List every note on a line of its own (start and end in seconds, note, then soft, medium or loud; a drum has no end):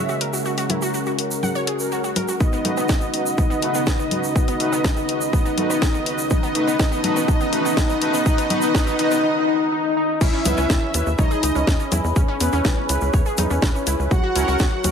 0.00 2.37 C#3 medium
0.00 9.23 C#3 medium
0.00 9.23 G#3 medium
0.00 3.68 C#4 medium
0.00 6.27 C#4 medium
0.00 0.11 E4 loud
0.00 2.37 F#4 medium
0.00 7.87 F#4 medium
0.00 2.37 A#4 medium
0.00 2.41 A#4 medium
0.00 2.36 C#5 medium
0.00 0.11 E5 medium
0.09 0.18 F#4 medium
0.09 shaker soft
0.21 0.30 A#4 medium
0.21 open hi-hat loud
0.26 7.14 F#5 medium
0.33 0.39 F#4 medium
0.33 shaker medium
0.45 0.57 F#4 medium
0.45 shaker medium
0.58 0.63 F#4 loud
0.58 open hi-hat medium
0.58 shaker soft
0.70 1.16 C#4 medium
0.70 0.82 E4 medium
0.70 1.16 F#4 medium
0.70 1.16 A#4 medium
0.70 open hi-hat loud
0.70 low conga medium
0.82 0.91 F#4 loud
0.82 shaker medium
0.94 1.00 F#4 medium
0.94 shaker medium
1.06 1.16 F#4 medium
1.06 shaker soft
1.18 1.77 C#4 medium
1.18 1.77 F#4 medium
1.18 1.77 A#4 medium
1.18 open hi-hat loud
1.31 shaker medium
1.43 1.55 F#5 medium
1.43 low conga medium
1.43 shaker medium
1.55 1.61 C#5 loud
1.55 shaker soft
1.67 1.77 G#4 medium
1.67 open hi-hat loud
1.79 2.01 C#4 medium
1.79 2.01 F#4 medium
1.79 2.01 A#4 loud
1.79 shaker medium
1.92 1.97 F#4 medium
1.92 shaker medium
2.04 2.13 F#4 medium
2.04 shaker soft
2.16 2.25 A#4 medium
2.16 open hi-hat loud
2.16 low conga medium
2.28 2.34 F#4 medium
2.28 shaker medium
2.40 9.19 C#3 medium
2.40 6.31 C#3 medium
2.40 2.52 B3 medium
2.40 3.36 D#4 loud
2.40 6.27 F#4 medium
2.40 6.27 B4 medium
2.40 6.27 D#5 loud
2.40 3.36 D#5 loud
2.40 kick loud
2.40 shaker medium
2.53 2.58 B3 loud
2.53 shaker soft
2.65 2.77 A3 medium
2.65 2.86 D#4 medium
2.65 2.86 F#4 medium
2.65 2.86 B4 medium
2.65 open hi-hat loud
2.65 low conga medium
2.70 7.36 B4 medium
2.77 2.86 B3 medium
2.77 shaker medium
2.86 2.95 B3 medium
2.86 6.31 D#4 medium
2.86 kick loud
2.86 snare loud
2.86 shaker medium
3.01 3.11 B3 medium
3.01 shaker soft
3.14 3.27 D#4 medium
3.14 3.27 F#4 medium
3.14 3.27 B4 medium
3.14 open hi-hat medium
3.26 shaker medium
3.38 3.49 B3 medium
3.38 4.34 D#4 loud
3.38 4.34 D#5 loud
3.38 kick loud
3.38 low conga medium
3.38 shaker medium
3.50 3.56 B3 medium
3.50 shaker soft
3.62 3.74 A3 medium
3.62 3.84 D#4 medium
3.62 3.84 F#4 medium
3.62 3.84 B4 loud
3.62 open hi-hat loud
3.74 3.84 B3 loud
3.74 shaker medium
3.86 3.92 B3 medium
3.86 kick loud
3.86 snare loud
3.86 shaker medium
3.99 4.08 B3 medium
3.99 shaker soft
4.11 4.25 D#4 medium
4.11 4.25 F#4 medium
4.11 4.25 B4 medium
4.11 open hi-hat loud
4.11 low conga medium
4.24 shaker medium
4.36 4.47 B3 medium
4.36 5.31 D#4 loud
4.36 5.31 D#5 loud
4.36 kick loud
4.36 shaker medium
4.48 4.53 B3 loud
4.48 open hi-hat medium
4.48 shaker soft
4.60 4.72 A3 medium
4.60 4.82 D#4 medium
4.60 4.82 F#4 medium
4.60 4.82 B4 medium
4.60 open hi-hat loud
4.72 4.81 B3 loud
4.72 shaker medium
4.84 4.90 B3 medium
4.84 kick loud
4.84 snare loud
4.84 low conga medium
4.84 shaker medium
4.97 5.06 B3 medium
4.97 shaker soft
5.09 5.22 D#4 medium
5.09 5.22 F#4 medium
5.09 5.22 B4 medium
5.09 open hi-hat loud
5.21 shaker medium
5.33 5.44 B3 medium
5.33 6.29 D#4 loud
5.33 6.29 D#5 loud
5.33 kick loud
5.33 shaker medium
5.45 5.51 B3 medium
5.45 shaker soft
5.58 5.69 A3 medium
5.58 5.79 D#4 medium
5.58 5.79 F#4 medium
5.58 5.79 B4 loud
5.58 open hi-hat loud
5.58 low conga medium
5.70 5.79 B3 loud
5.70 shaker medium
5.82 5.87 B3 medium
5.82 kick loud
5.82 snare loud
5.82 shaker medium
5.94 6.03 B3 medium
5.94 shaker soft
6.06 6.20 D#4 medium
6.06 6.20 F#4 medium
6.06 6.20 B4 medium
6.06 open hi-hat loud
6.18 shaker medium
6.30 9.21 E3 medium
6.30 6.42 B3 medium
6.30 9.23 C#4 medium
6.30 9.21 C#4 medium
6.30 6.78 D#4 loud
6.30 6.78 D#5 loud
6.30 9.21 A5 medium
6.30 kick loud
6.30 low conga loud
6.30 shaker medium
6.43 6.48 B3 loud
6.43 shaker soft
6.55 6.67 A3 medium
6.55 6.77 D#4 medium
6.55 6.77 F#4 medium
6.55 6.77 B4 loud
6.55 open hi-hat loud
6.67 6.76 B3 loud
6.67 shaker medium
6.79 6.91 B3 medium
6.79 7.26 D#4 loud
6.79 7.26 D#5 loud
6.79 kick loud
6.79 snare loud
6.79 shaker medium
6.89 6.97 B3 loud
6.89 9.23 A5 medium
6.89 shaker soft
7.04 7.16 A3 medium
7.04 7.26 D#4 medium
7.04 7.26 F#4 medium
7.04 7.26 B4 loud
7.04 open hi-hat loud
7.04 low conga medium
7.16 7.25 B3 loud
7.16 shaker medium
7.28 7.39 B3 medium
7.28 7.75 D#4 loud
7.28 7.75 D#5 loud
7.28 kick loud
7.28 shaker medium
7.41 7.46 B3 loud
7.41 shaker soft
7.53 7.64 A3 medium
7.53 7.74 D#4 medium
7.53 7.74 F#4 medium
7.53 7.74 B4 loud
7.53 open hi-hat loud
7.65 7.74 B3 loud
7.65 shaker medium
7.77 7.88 B3 medium
7.77 8.24 D#4 loud
7.77 8.24 D#5 loud
7.77 kick loud
7.77 snare loud
7.77 low conga loud
7.77 shaker medium
7.89 7.95 B3 loud
7.89 shaker soft
8.01 8.13 A3 medium
8.01 8.23 D#4 medium
8.01 8.23 F#4 medium
8.01 8.23 B4 loud
8.01 open hi-hat medium
8.14 8.23 B3 medium
8.14 shaker medium
8.26 8.37 B3 medium
8.26 8.48 D#4 loud
8.26 8.47 D#4 loud
8.26 8.47 F#4 medium
8.26 8.47 B4 loud
8.26 8.48 D#5 loud
8.26 kick loud
8.26 shaker medium
8.38 8.44 B3 loud
8.38 open hi-hat medium
8.38 shaker soft
8.50 8.61 B3 medium
8.50 8.73 D#4 loud
8.50 8.72 D#4 loud
8.50 8.72 F#4 medium
8.50 8.72 B4 loud
8.50 8.73 D#5 loud
8.50 open hi-hat loud
8.50 low conga medium
8.62 8.68 B3 loud
8.62 shaker medium
8.75 8.86 B3 medium
8.75 8.96 D#4 loud
8.75 8.97 D#4 loud
8.75 8.96 F#4 medium
8.75 8.96 B4 loud
8.75 8.97 D#5 loud
8.75 kick loud
8.75 snare loud
8.75 shaker medium
8.87 8.92 B3 loud
8.87 shaker soft
8.99 9.10 B3 medium
8.99 9.22 D#4 loud
8.99 9.21 D#4 loud
8.99 9.21 F#4 medium
8.99 9.21 B4 loud
8.99 9.22 D#5 loud
8.99 open hi-hat loud
9.11 9.17 B3 loud
9.11 shaker medium
9.23 9.46 D#4 loud
9.48 9.70 D#4 loud
9.72 9.95 D#4 loud
9.97 10.19 D#4 loud
10.21 10.30 C#2 loud
10.21 10.32 C#4 medium
10.21 11.09 E4 loud
10.21 14.07 G#4 medium
10.21 14.91 C#5 medium
10.21 11.09 E5 loud
10.21 14.07 G#5 medium
10.21 14.07 B5 loud
10.21 kick loud
10.21 crash loud
10.21 shaker soft
10.33 10.39 C#4 loud
10.45 10.54 C#2 loud
10.45 10.57 B3 medium
10.45 10.67 C#4 medium
10.45 10.67 E4 medium
10.45 10.67 B4 loud
10.45 open hi-hat loud
10.45 low conga loud
10.45 shaker medium
10.57 10.66 C#2 medium
10.57 10.67 C#4 loud
10.57 14.11 B4 medium
10.57 shaker soft
10.70 10.78 D#2 loud
10.70 10.75 C#4 medium
10.70 kick loud
10.70 snare loud
10.70 shaker medium
10.82 10.91 C#4 medium
10.87 14.91 G#4 medium
10.94 11.03 D#2 loud
10.94 11.08 C#4 medium
10.94 11.08 E4 medium
10.94 11.08 B4 medium
10.94 open hi-hat loud
10.94 shaker medium
11.06 11.15 D#2 medium
11.06 shaker soft
11.18 11.27 C#2 loud
11.18 11.82 D#4 loud
11.18 11.30 C#5 medium
11.18 11.82 D#5 loud
11.18 kick loud
11.18 low conga medium
11.18 shaker medium
11.31 11.36 G#4 loud
11.31 shaker soft
11.43 11.52 C#2 medium
11.43 11.52 D#4 medium
11.43 open hi-hat loud
11.43 shaker medium
11.55 11.64 C#2 medium
11.55 11.61 C#4 medium
11.55 shaker soft
11.67 11.76 E2 loud
11.67 11.73 C#4 medium
11.67 kick loud
11.67 snare loud
11.67 shaker medium
11.80 11.89 C#4 medium
11.80 shaker soft
11.92 12.00 E2 loud
11.92 12.01 E4 medium
11.92 open hi-hat loud
11.92 low conga medium
11.92 shaker medium
12.04 12.12 E2 medium
12.04 shaker soft
12.16 12.25 E2 loud
12.16 12.27 C#4 medium
12.16 kick loud
12.16 shaker medium
12.28 12.34 C#4 loud
12.40 12.49 E2 loud
12.40 12.52 B3 medium
12.40 12.86 C#4 medium
12.40 12.86 E4 medium
12.40 12.86 B4 medium
12.40 open hi-hat loud
12.40 shaker medium
12.52 12.61 E2 medium
12.52 12.62 C#4 loud
12.52 shaker soft
12.65 12.73 C#2 loud
12.65 12.70 C#4 medium
12.65 kick loud
12.65 snare loud
12.65 low conga medium
12.65 shaker medium
12.77 12.86 C#4 medium
12.89 12.98 C#2 medium
12.89 14.10 C#4 medium
12.89 14.10 E4 medium
12.89 14.10 B4 medium
12.89 open hi-hat loud
12.89 shaker medium
13.01 13.10 C#2 medium
13.01 shaker soft
13.13 13.22 E2 loud
13.13 13.25 C#5 medium
13.13 kick loud
13.13 shaker medium
13.26 13.31 G#4 loud
13.26 shaker soft
13.37 13.47 E2 medium
13.37 13.47 D#4 medium
13.37 open hi-hat loud
13.37 low conga medium
13.37 shaker medium
13.50 13.59 E2 medium
13.50 13.56 C#4 medium
13.50 shaker soft
13.62 13.71 C#2 loud
13.62 13.68 C#4 medium
13.62 kick loud
13.62 snare loud
13.62 shaker soft
13.75 13.84 C#4 medium
13.75 shaker soft
13.87 13.95 C#2 medium
13.87 13.96 E4 medium
13.87 open hi-hat loud
13.87 shaker loud
13.99 14.08 C#2 medium
13.99 shaker soft
14.11 14.20 C#2 loud
14.11 14.91 F#4 loud
14.11 14.22 F#4 medium
14.11 14.91 A#4 medium
14.11 14.91 F#5 medium
14.11 14.91 F#5 loud
14.11 14.91 C#6 medium
14.11 kick loud
14.11 low conga medium
14.11 shaker medium
14.24 14.29 F#4 loud
14.35 14.44 C#2 medium
14.35 14.57 C#4 medium
14.35 14.47 E4 medium
14.35 14.57 F#4 medium
14.35 14.57 A#4 loud
14.35 open hi-hat loud
14.35 shaker medium
14.48 14.56 C#2 medium
14.48 14.57 F#4 loud
14.48 shaker soft
14.59 14.69 D#2 loud
14.59 14.66 F#4 medium
14.59 kick loud
14.59 snare loud
14.59 shaker medium
14.72 14.81 F#4 medium
14.84 14.91 D#2 loud
14.84 14.91 C#4 medium
14.84 14.91 F#4 medium
14.84 14.91 A#4 medium
14.84 open hi-hat loud
14.84 low conga medium
14.84 shaker loud